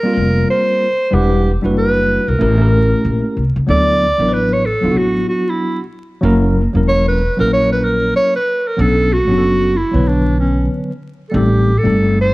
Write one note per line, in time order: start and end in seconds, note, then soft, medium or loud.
0.00 0.86 G3 medium
0.00 0.86 A#3 medium
0.00 0.50 A#4 loud
0.05 0.87 C4 medium
0.05 0.87 F4 medium
0.05 0.11 G4 medium
0.13 0.43 F1 medium
0.13 0.91 A#4 medium
0.50 1.16 C5 loud
1.11 1.55 E1 loud
1.11 1.49 G3 medium
1.11 1.49 D4 medium
1.11 1.50 E4 medium
1.11 1.51 G4 loud
1.11 1.51 B4 medium
1.11 1.50 F#5 medium
1.62 2.16 F#1 medium
1.62 2.34 G3 medium
1.62 2.34 D4 medium
1.62 2.35 E4 medium
1.62 2.35 F#4 medium
1.62 2.35 B4 medium
1.78 2.31 B4 loud
2.28 2.38 B1 medium
2.28 3.37 A#4 medium
2.39 2.93 A1 loud
2.39 2.55 A3 medium
2.39 2.56 C#4 medium
2.39 2.56 E4 medium
2.39 2.57 G4 medium
2.39 2.57 A#4 medium
2.58 3.41 A3 medium
2.58 3.41 C#4 medium
2.58 3.42 E4 medium
2.58 3.42 G4 medium
2.58 3.43 A#4 medium
3.05 3.20 A#1 medium
3.37 3.52 C2 medium
3.56 3.66 C#2 medium
3.67 4.10 D2 loud
3.67 4.04 F#3 medium
3.67 4.05 B3 medium
3.67 4.05 D4 medium
3.67 4.06 E4 medium
3.67 4.06 A4 medium
3.67 4.35 D5 loud
4.18 4.72 A1 medium
4.18 4.64 F#3 medium
4.18 4.64 B3 medium
4.18 4.65 D4 medium
4.18 4.65 E4 medium
4.22 4.26 A#4 medium
4.29 4.69 B4 medium
4.34 4.55 B4 medium
4.53 4.68 C#5 medium
4.66 4.99 A4 medium
4.81 4.96 D2 medium
4.81 5.79 F#3 medium
4.81 5.79 B3 medium
4.81 5.79 D4 medium
4.81 5.80 E4 medium
4.81 4.89 F4 medium
4.91 5.84 F#4 medium
4.96 5.22 A1 medium
4.96 5.29 F#4 medium
5.29 5.51 F#4 medium
5.49 5.80 E4 medium
6.21 6.65 F#1 loud
6.21 6.59 F#3 medium
6.21 6.60 A#3 medium
6.21 6.60 C#4 medium
6.21 6.61 E4 medium
6.21 6.61 A#4 loud
6.73 7.27 E1 medium
6.73 7.19 F#3 medium
6.73 7.19 A#3 medium
6.73 7.20 C#4 medium
6.73 7.20 E4 medium
6.73 7.21 A#4 medium
6.89 7.06 C#5 loud
7.08 7.37 B4 medium
7.37 8.11 A#1 medium
7.37 8.34 F#3 medium
7.37 8.35 A#3 medium
7.37 8.35 C#4 medium
7.37 8.35 E4 medium
7.37 7.51 A#4 medium
7.41 8.36 A#4 medium
7.53 7.70 C#5 loud
7.72 7.86 B4 medium
7.85 8.16 A#4 loud
8.17 8.34 C#5 loud
8.36 8.69 B4 loud
8.68 8.82 A#4 medium
8.77 9.30 B1 loud
8.77 9.15 F#3 medium
8.77 9.15 B3 medium
8.77 9.16 C#4 medium
8.77 9.16 D4 medium
8.77 9.17 A4 medium
8.81 9.15 A4 loud
9.13 9.78 F#4 loud
9.27 9.82 F#1 medium
9.27 9.74 F#3 medium
9.27 9.74 B3 medium
9.27 9.75 C#4 medium
9.27 9.75 D4 medium
9.31 9.36 G4 medium
9.38 9.79 A4 medium
9.77 10.10 E4 medium
9.91 10.67 B1 medium
9.91 10.90 D3 medium
9.91 10.89 F#3 medium
9.91 10.90 B3 medium
9.91 10.91 B4 medium
9.91 10.90 C#5 medium
10.09 10.39 D4 medium
10.40 10.69 C#4 medium
11.30 11.70 G3 medium
11.30 11.71 A3 medium
11.30 11.37 A4 medium
11.34 11.76 A1 loud
11.34 11.71 C4 medium
11.34 11.71 D#4 medium
11.34 11.80 G4 medium
11.34 11.72 A4 medium
11.79 12.20 A4 medium
11.83 12.34 G1 medium
11.83 12.29 G3 medium
11.83 12.30 A3 medium
11.83 12.30 C4 medium
11.83 12.31 D#4 medium
11.83 12.31 A4 medium
12.21 12.34 C5 medium